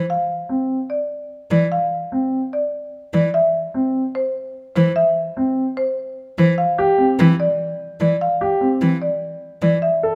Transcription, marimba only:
0.00 0.16 C5 soft
0.10 0.36 F5 medium
0.90 1.17 D5 soft
1.51 1.78 D5 soft
1.72 1.98 F5 medium
2.53 2.79 D5 soft
3.14 3.40 D5 soft
3.34 3.60 E5 medium
4.15 4.41 C5 medium
4.76 5.02 C5 medium
4.96 5.22 E5 medium
5.77 6.04 C5 medium
6.38 6.64 C5 medium
6.58 6.84 F5 medium
7.40 7.66 D5 medium
8.01 8.27 D5 soft
8.21 8.47 F5 medium
9.02 9.28 D5 soft
9.62 9.89 D5 soft
9.82 10.09 E5 medium

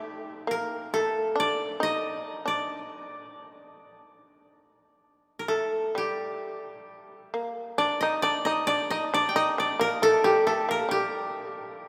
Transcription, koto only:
0.00 1.20 D#4 medium
0.00 0.16 D5 medium
0.51 1.00 A#4 medium
0.94 2.84 A4 medium
1.40 1.89 D5 medium
1.83 2.54 D#5 medium
2.48 5.43 D5 medium
5.39 5.54 A#4 soft
5.48 7.39 A4 medium
5.98 8.02 G4 medium
7.78 8.07 D5 medium
8.01 8.28 D#5 medium
8.22 8.51 D5 medium
8.45 8.73 D#5 medium
8.67 8.96 D5 medium
8.90 9.20 D#5 medium
9.14 9.42 D5 medium
9.29 10.63 G5 medium
9.36 9.66 D#5 medium
9.60 11.20 D5 medium
9.81 10.09 A#4 medium
10.03 10.46 A4 loud
10.24 10.91 G4 medium
10.47 10.77 A4 medium
10.71 11.88 A#4 medium
10.91 11.88 G4 medium

